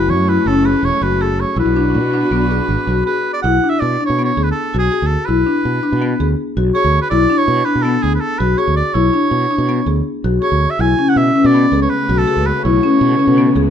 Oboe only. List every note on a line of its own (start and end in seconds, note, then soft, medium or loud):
0.00 0.12 B4 loud
0.10 0.30 C#5 medium
0.29 0.49 B4 medium
0.48 0.67 A4 medium
0.66 0.86 B4 medium
0.85 1.04 C#5 loud
1.03 1.23 B4 medium
1.22 1.42 A4 medium
1.40 1.58 C#5 medium
1.60 3.04 B4 medium
3.06 3.32 B4 medium
3.33 3.38 D5 medium
3.42 3.71 F#5 medium
3.70 3.81 E5 loud
3.80 4.05 D5 medium
4.06 4.24 C#5 medium
4.25 4.45 C#5 medium
4.44 4.51 B4 medium
4.51 4.78 A4 medium
4.79 5.08 G#4 medium
5.07 5.27 A4 medium
5.26 6.37 B4 medium
6.75 7.00 C#5 loud
7.02 7.10 B4 loud
7.10 7.39 D5 loud
7.38 7.66 C#5 loud
7.65 7.84 B4 medium
7.83 8.04 A4 medium
8.03 8.15 G#4 medium
8.15 8.22 B4 medium
8.21 8.40 A4 medium
8.39 8.60 B4 medium
8.58 8.76 C#5 medium
8.76 8.95 D5 medium
8.94 10.05 C#5 medium
10.42 10.72 C#5 medium
10.70 10.82 E5 medium
10.81 11.10 G#5 loud
11.09 11.19 F#5 loud
11.18 11.47 E5 loud
11.46 11.81 D5 loud
11.82 11.91 C#5 medium
11.90 12.20 B4 medium
12.19 12.48 A4 medium
12.46 12.63 B4 medium
12.64 13.70 C#5 medium